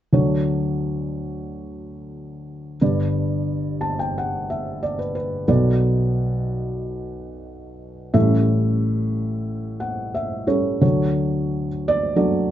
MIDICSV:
0, 0, Header, 1, 2, 480
1, 0, Start_track
1, 0, Key_signature, 2, "major"
1, 0, Tempo, 668151
1, 101, Time_signature, 4, 2, 24, 8
1, 8988, End_track
2, 0, Start_track
2, 0, Title_t, "Felt piano"
2, 0, Program_c, 0, 0
2, 90, Note_on_c, 0, 38, 53
2, 91, Note_on_c, 0, 62, 43
2, 94, Note_on_c, 0, 54, 51
2, 97, Note_on_c, 0, 69, 45
2, 98, Note_on_c, 0, 50, 53
2, 99, Note_on_c, 0, 73, 58
2, 234, Control_c, 0, 64, 127
2, 1987, Note_off_c, 0, 38, 0
2, 1987, Note_off_c, 0, 62, 0
2, 1988, Note_off_c, 0, 54, 0
2, 1990, Note_off_c, 0, 69, 0
2, 1991, Note_off_c, 0, 50, 0
2, 1991, Note_off_c, 0, 73, 0
2, 2022, Note_on_c, 0, 55, 55
2, 2023, Note_on_c, 0, 43, 55
2, 2024, Note_on_c, 0, 71, 49
2, 2027, Note_on_c, 0, 31, 53
2, 2029, Note_on_c, 0, 62, 47
2, 2029, Note_on_c, 0, 74, 59
2, 2030, Control_c, 0, 64, 0
2, 2139, Control_c, 0, 64, 127
2, 2736, Note_on_c, 0, 81, 51
2, 2849, Note_off_c, 0, 81, 0
2, 2868, Note_on_c, 0, 79, 45
2, 2975, Note_off_c, 0, 79, 0
2, 3002, Note_on_c, 0, 78, 54
2, 3214, Note_off_c, 0, 78, 0
2, 3232, Note_on_c, 0, 76, 49
2, 3449, Note_off_c, 0, 76, 0
2, 3457, Note_off_c, 0, 74, 0
2, 3467, Note_on_c, 0, 74, 55
2, 3573, Note_off_c, 0, 71, 0
2, 3574, Note_off_c, 0, 74, 0
2, 3584, Note_on_c, 0, 71, 48
2, 3690, Note_off_c, 0, 71, 0
2, 3700, Note_on_c, 0, 71, 52
2, 3909, Note_off_c, 0, 43, 0
2, 3909, Note_off_c, 0, 55, 0
2, 3911, Note_off_c, 0, 31, 0
2, 3912, Note_off_c, 0, 62, 0
2, 3922, Note_off_c, 0, 71, 0
2, 3936, Note_on_c, 0, 54, 52
2, 3936, Note_on_c, 0, 69, 52
2, 3938, Note_on_c, 0, 47, 49
2, 3939, Note_on_c, 0, 59, 53
2, 3940, Note_on_c, 0, 35, 49
2, 3940, Note_on_c, 0, 74, 62
2, 3947, Control_c, 0, 64, 0
2, 4083, Control_c, 0, 64, 127
2, 5827, Note_off_c, 0, 54, 0
2, 5827, Note_off_c, 0, 69, 0
2, 5828, Note_off_c, 0, 47, 0
2, 5828, Note_off_c, 0, 59, 0
2, 5829, Note_off_c, 0, 35, 0
2, 5829, Note_off_c, 0, 74, 0
2, 5844, Note_on_c, 0, 33, 58
2, 5845, Note_on_c, 0, 69, 52
2, 5845, Note_on_c, 0, 76, 68
2, 5846, Note_on_c, 0, 55, 50
2, 5848, Note_on_c, 0, 45, 54
2, 5849, Note_on_c, 0, 61, 49
2, 5865, Control_c, 0, 64, 0
2, 5980, Control_c, 0, 64, 127
2, 7041, Note_on_c, 0, 78, 45
2, 7274, Note_off_c, 0, 78, 0
2, 7277, Note_off_c, 0, 76, 0
2, 7288, Note_on_c, 0, 76, 54
2, 7508, Note_off_c, 0, 55, 0
2, 7508, Note_off_c, 0, 69, 0
2, 7509, Note_off_c, 0, 61, 0
2, 7521, Note_on_c, 0, 55, 39
2, 7523, Note_on_c, 0, 61, 35
2, 7525, Note_on_c, 0, 69, 39
2, 7525, Note_on_c, 0, 73, 49
2, 7748, Note_off_c, 0, 33, 0
2, 7748, Note_off_c, 0, 76, 0
2, 7750, Note_off_c, 0, 45, 0
2, 7758, Note_off_c, 0, 69, 0
2, 7764, Note_off_c, 0, 73, 0
2, 7768, Note_on_c, 0, 54, 50
2, 7768, Note_on_c, 0, 69, 46
2, 7769, Note_on_c, 0, 50, 48
2, 7769, Note_on_c, 0, 62, 43
2, 7771, Note_on_c, 0, 38, 44
2, 7772, Note_off_c, 0, 55, 0
2, 7773, Note_off_c, 0, 61, 0
2, 7775, Note_on_c, 0, 73, 54
2, 7792, Control_c, 0, 64, 0
2, 7905, Control_c, 0, 64, 127
2, 8389, Note_off_c, 0, 54, 0
2, 8389, Note_off_c, 0, 62, 0
2, 8389, Note_off_c, 0, 69, 0
2, 8392, Note_off_c, 0, 73, 0
2, 8535, Note_on_c, 0, 74, 90
2, 8729, Note_off_c, 0, 74, 0
2, 8736, Note_on_c, 0, 54, 58
2, 8737, Note_on_c, 0, 69, 47
2, 8739, Note_on_c, 0, 62, 47
2, 8739, Note_on_c, 0, 74, 57
2, 8988, Note_off_c, 0, 38, 0
2, 8988, Note_off_c, 0, 50, 0
2, 8988, Note_off_c, 0, 54, 0
2, 8988, Note_off_c, 0, 62, 0
2, 8988, Note_off_c, 0, 69, 0
2, 8988, Note_off_c, 0, 74, 0
2, 8988, End_track
0, 0, End_of_file